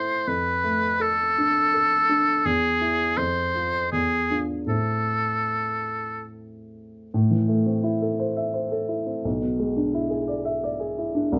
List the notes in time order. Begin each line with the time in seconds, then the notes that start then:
Already playing: A2 C4 E4 A4 C5
0.27 F2 B4
0.64 A3
1.00 A4
1.38 D4
1.74 A4
2.09 D4
2.45 E2 G#4
2.81 E4
3.17 F2 C5
3.55 C4 F4
3.92 E2 G#4
4.30 D4 F4
4.66 A2 A3 C4 E4 A4
7.14 A2
7.31 E3
7.48 A3
7.66 C4
7.83 E4
8.02 A4
8.20 C5
8.37 E5
8.54 C5
8.72 A4
8.88 E4
9.06 C4
9.25 B1
9.41 B2
9.59 G#3
9.77 D4
9.94 E4
10.10 G#4
10.28 D5
10.45 E5
10.64 D5
10.80 G#4
10.98 E4
11.15 D4
11.32 C2